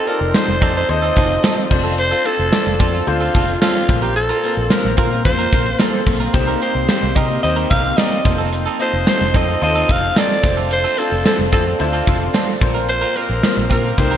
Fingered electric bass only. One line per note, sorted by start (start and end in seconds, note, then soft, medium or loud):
0.21 0.31 F1 medium
0.48 0.58 F1 loud
0.62 0.82 F2 loud
0.89 1.09 D#2 loud
1.17 1.37 F1 medium
1.71 2.12 F1 loud
2.39 2.49 F1 loud
2.66 2.77 F1 loud
2.80 3.00 F2 loud
3.07 3.28 D2 loud
3.35 3.55 F1 loud
3.89 4.30 A#1 loud
4.57 4.67 A#1 medium
4.85 4.95 A#1 medium
4.98 5.27 A#2 loud
5.25 5.46 F2 loud
5.53 5.73 A#1 medium
6.07 6.27 B1 loud
6.34 6.55 C2 loud
6.75 6.85 C2 loud
7.03 7.13 C2 medium
7.16 7.37 C3 loud
7.44 7.64 D#2 medium
7.71 7.91 C2 loud
8.25 8.66 F1 loud
8.93 9.04 F1 medium
9.21 9.31 F1 loud
9.34 9.55 F2 loud
9.62 9.82 D#2 loud
9.89 10.10 F1 loud
10.44 10.84 F1 loud
11.12 11.22 F1 loud
11.39 11.49 F1 loud
11.53 11.73 F2 loud
11.80 12.00 D2 loud
12.07 12.28 F1 loud
12.62 13.03 A#1 loud
13.29 13.40 A#1 loud
13.57 13.67 A#1 medium
13.71 13.91 A#2 medium
13.98 14.17 C2 loud